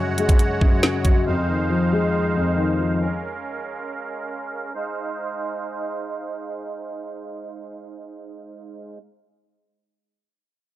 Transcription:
Already playing: grand piano F#2 C#3 F#3, accordion G#3 F#4 C#5 F#5
0.18 grand piano G#3, closed hi-hat
0.29 kick, closed hi-hat
0.39 closed hi-hat
0.61 grand piano F#2, kick
0.83 grand piano C#3, snare
1.05 grand piano F#3, kick, closed hi-hat
1.27 grand piano F2, accordion D#4 C5 F5
1.49 grand piano D#3
1.70 grand piano F3
1.92 grand piano G#3
2.35 grand piano F2
2.57 grand piano D#3
2.79 grand piano F3
3.00 accordion C#4 A#4
4.74 accordion G#3 D#4 C5 F5

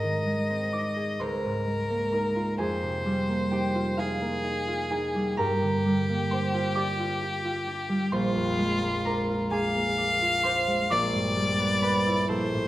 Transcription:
Already playing: harp G#2 G#3 C4 G#4 A#4 G#5 A#5, violin D#5
0.03 harp D#3
0.26 harp G#3
0.50 harp C4
0.73 harp D#4 D5 D6
0.97 harp G#4
1.20 harp C#2 C5 C6, violin A#4
1.45 harp G#2
1.67 harp G#3
1.90 harp A#3
2.12 harp D#4 A#4 A#5
2.36 harp F4
2.58 harp F2 G#4 G#5, violin C5
2.83 harp C3
3.05 harp G3
3.29 harp A#3
3.51 harp D#4 G4 G5
3.75 harp F4
3.97 harp D#4 F4 F5, violin G#4
4.22 harp A#3
4.44 harp D#4
4.68 harp F4
4.91 harp D#4 G#4 G#5
5.15 harp G3
5.37 harp G2 A#4 A#5, violin G4
5.62 harp D3
5.85 harp G3
6.09 harp A#3
6.31 harp D4 C5 C6
6.54 harp F4
6.75 harp G4 D5 D6
6.99 harp F4
7.23 harp G4
7.45 harp F4
7.67 harp D4
7.89 harp G3
8.12 harp A#1 C5 C6, violin F4
8.36 harp F2
8.59 harp G#3
8.83 harp A#3
9.05 harp D4 A#4 A#5
9.29 harp F4
9.51 harp D4 G#4 G#5, violin F5
9.75 harp A#3
9.98 harp D4
10.22 harp F4
10.43 harp D4 C5 C6
10.68 harp G#3
10.90 harp A#1 D5 D6, violin D5
11.13 harp G2
11.36 harp G3
11.59 harp B3
11.82 harp C4 B4 B5
12.06 harp E4
12.29 harp A#1 A4 A5, violin C5
12.53 harp A2

